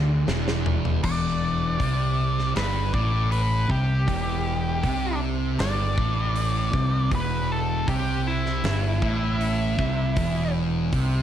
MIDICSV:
0, 0, Header, 1, 5, 480
1, 0, Start_track
1, 0, Key_signature, 1, "minor"
1, 0, Tempo, 761421
1, 647, Time_signature, 4, 2, 24, 8
1, 7075, End_track
2, 0, Start_track
2, 0, Title_t, "Lead electric guitar"
2, 0, Program_c, 0, 29
2, 659, Note_on_c, 0, 74, 82
2, 1587, Note_off_c, 0, 74, 0
2, 1616, Note_on_c, 0, 71, 84
2, 1844, Note_off_c, 0, 71, 0
2, 1856, Note_on_c, 0, 74, 85
2, 2083, Note_off_c, 0, 74, 0
2, 2090, Note_on_c, 0, 71, 94
2, 2321, Note_off_c, 0, 71, 0
2, 2339, Note_on_c, 0, 67, 96
2, 3267, Note_off_c, 0, 67, 0
2, 3530, Note_on_c, 0, 74, 117
2, 4464, Note_off_c, 0, 74, 0
2, 4507, Note_on_c, 0, 71, 88
2, 4730, Note_off_c, 0, 71, 0
2, 4739, Note_on_c, 0, 69, 88
2, 4966, Note_off_c, 0, 69, 0
2, 4973, Note_on_c, 0, 67, 89
2, 5203, Note_off_c, 0, 67, 0
2, 5214, Note_on_c, 0, 64, 100
2, 6628, Note_off_c, 0, 64, 0
2, 7075, End_track
3, 0, Start_track
3, 0, Title_t, "Distorted electric guitar"
3, 0, Program_c, 1, 30
3, 0, Note_on_c, 1, 50, 106
3, 159, Note_off_c, 1, 50, 0
3, 162, Note_on_c, 1, 40, 99
3, 637, Note_off_c, 1, 40, 0
3, 647, Note_on_c, 1, 40, 106
3, 1119, Note_off_c, 1, 40, 0
3, 1127, Note_on_c, 1, 48, 101
3, 1599, Note_off_c, 1, 48, 0
3, 1605, Note_on_c, 1, 43, 102
3, 1838, Note_off_c, 1, 43, 0
3, 1845, Note_on_c, 1, 45, 100
3, 2318, Note_off_c, 1, 45, 0
3, 2326, Note_on_c, 1, 48, 90
3, 2558, Note_off_c, 1, 48, 0
3, 2566, Note_on_c, 1, 40, 120
3, 3038, Note_off_c, 1, 40, 0
3, 3053, Note_on_c, 1, 48, 104
3, 3522, Note_off_c, 1, 48, 0
3, 3529, Note_on_c, 1, 43, 99
3, 3760, Note_off_c, 1, 43, 0
3, 3768, Note_on_c, 1, 45, 102
3, 4240, Note_off_c, 1, 45, 0
3, 4242, Note_on_c, 1, 48, 90
3, 4477, Note_off_c, 1, 48, 0
3, 4483, Note_on_c, 1, 40, 119
3, 4958, Note_off_c, 1, 40, 0
3, 4961, Note_on_c, 1, 48, 92
3, 5437, Note_off_c, 1, 48, 0
3, 5443, Note_on_c, 1, 43, 99
3, 5677, Note_on_c, 1, 45, 103
3, 5678, Note_off_c, 1, 43, 0
3, 6156, Note_off_c, 1, 45, 0
3, 6166, Note_on_c, 1, 48, 91
3, 6401, Note_off_c, 1, 48, 0
3, 6407, Note_on_c, 1, 40, 118
3, 6882, Note_off_c, 1, 40, 0
3, 6885, Note_on_c, 1, 48, 94
3, 7075, Note_off_c, 1, 48, 0
3, 7075, End_track
4, 0, Start_track
4, 0, Title_t, "Fingered electric bass"
4, 0, Program_c, 2, 33
4, 0, Note_on_c, 2, 38, 105
4, 142, Note_off_c, 2, 38, 0
4, 175, Note_on_c, 2, 28, 107
4, 625, Note_off_c, 2, 28, 0
4, 657, Note_on_c, 2, 28, 102
4, 1106, Note_off_c, 2, 28, 0
4, 1135, Note_on_c, 2, 36, 78
4, 1585, Note_off_c, 2, 36, 0
4, 1613, Note_on_c, 2, 31, 86
4, 1833, Note_off_c, 2, 31, 0
4, 1854, Note_on_c, 2, 33, 98
4, 2305, Note_off_c, 2, 33, 0
4, 2330, Note_on_c, 2, 36, 94
4, 2551, Note_off_c, 2, 36, 0
4, 2569, Note_on_c, 2, 28, 92
4, 3022, Note_off_c, 2, 28, 0
4, 3047, Note_on_c, 2, 36, 88
4, 3501, Note_off_c, 2, 36, 0
4, 3524, Note_on_c, 2, 31, 84
4, 3748, Note_off_c, 2, 31, 0
4, 3769, Note_on_c, 2, 33, 100
4, 4223, Note_off_c, 2, 33, 0
4, 4246, Note_on_c, 2, 36, 109
4, 4470, Note_off_c, 2, 36, 0
4, 4484, Note_on_c, 2, 28, 99
4, 4940, Note_off_c, 2, 28, 0
4, 4967, Note_on_c, 2, 36, 82
4, 5423, Note_off_c, 2, 36, 0
4, 5443, Note_on_c, 2, 31, 98
4, 5669, Note_off_c, 2, 31, 0
4, 5690, Note_on_c, 2, 33, 99
4, 6145, Note_off_c, 2, 33, 0
4, 6169, Note_on_c, 2, 36, 100
4, 6392, Note_off_c, 2, 36, 0
4, 6410, Note_on_c, 2, 28, 95
4, 6866, Note_off_c, 2, 28, 0
4, 6888, Note_on_c, 2, 36, 84
4, 7075, Note_off_c, 2, 36, 0
4, 7075, End_track
5, 0, Start_track
5, 0, Title_t, "Drums"
5, 177, Note_on_c, 9, 38, 98
5, 240, Note_off_c, 9, 38, 0
5, 301, Note_on_c, 9, 38, 90
5, 364, Note_off_c, 9, 38, 0
5, 416, Note_on_c, 9, 43, 109
5, 479, Note_off_c, 9, 43, 0
5, 537, Note_on_c, 9, 43, 92
5, 600, Note_off_c, 9, 43, 0
5, 652, Note_on_c, 9, 49, 123
5, 654, Note_on_c, 9, 36, 102
5, 715, Note_off_c, 9, 49, 0
5, 717, Note_off_c, 9, 36, 0
5, 1134, Note_on_c, 9, 36, 94
5, 1138, Note_on_c, 9, 46, 52
5, 1197, Note_off_c, 9, 36, 0
5, 1201, Note_off_c, 9, 46, 0
5, 1505, Note_on_c, 9, 38, 31
5, 1568, Note_off_c, 9, 38, 0
5, 1613, Note_on_c, 9, 46, 61
5, 1620, Note_on_c, 9, 38, 107
5, 1676, Note_off_c, 9, 46, 0
5, 1683, Note_off_c, 9, 38, 0
5, 1852, Note_on_c, 9, 36, 108
5, 1915, Note_off_c, 9, 36, 0
5, 2091, Note_on_c, 9, 46, 62
5, 2154, Note_off_c, 9, 46, 0
5, 2331, Note_on_c, 9, 36, 103
5, 2394, Note_off_c, 9, 36, 0
5, 2570, Note_on_c, 9, 46, 57
5, 2571, Note_on_c, 9, 36, 99
5, 2633, Note_off_c, 9, 46, 0
5, 2634, Note_off_c, 9, 36, 0
5, 3048, Note_on_c, 9, 36, 97
5, 3048, Note_on_c, 9, 46, 59
5, 3111, Note_off_c, 9, 36, 0
5, 3111, Note_off_c, 9, 46, 0
5, 3524, Note_on_c, 9, 46, 61
5, 3532, Note_on_c, 9, 38, 106
5, 3587, Note_off_c, 9, 46, 0
5, 3595, Note_off_c, 9, 38, 0
5, 3768, Note_on_c, 9, 36, 112
5, 3831, Note_off_c, 9, 36, 0
5, 4007, Note_on_c, 9, 46, 64
5, 4070, Note_off_c, 9, 46, 0
5, 4245, Note_on_c, 9, 36, 119
5, 4308, Note_off_c, 9, 36, 0
5, 4485, Note_on_c, 9, 36, 112
5, 4485, Note_on_c, 9, 46, 60
5, 4548, Note_off_c, 9, 36, 0
5, 4548, Note_off_c, 9, 46, 0
5, 4967, Note_on_c, 9, 36, 108
5, 4967, Note_on_c, 9, 46, 61
5, 5030, Note_off_c, 9, 36, 0
5, 5030, Note_off_c, 9, 46, 0
5, 5331, Note_on_c, 9, 38, 35
5, 5394, Note_off_c, 9, 38, 0
5, 5445, Note_on_c, 9, 46, 54
5, 5453, Note_on_c, 9, 38, 113
5, 5508, Note_off_c, 9, 46, 0
5, 5516, Note_off_c, 9, 38, 0
5, 5687, Note_on_c, 9, 36, 110
5, 5750, Note_off_c, 9, 36, 0
5, 5930, Note_on_c, 9, 46, 64
5, 5993, Note_off_c, 9, 46, 0
5, 6169, Note_on_c, 9, 36, 111
5, 6232, Note_off_c, 9, 36, 0
5, 6407, Note_on_c, 9, 46, 59
5, 6409, Note_on_c, 9, 36, 116
5, 6470, Note_off_c, 9, 46, 0
5, 6472, Note_off_c, 9, 36, 0
5, 6887, Note_on_c, 9, 46, 59
5, 6889, Note_on_c, 9, 36, 100
5, 6950, Note_off_c, 9, 46, 0
5, 6952, Note_off_c, 9, 36, 0
5, 7075, End_track
0, 0, End_of_file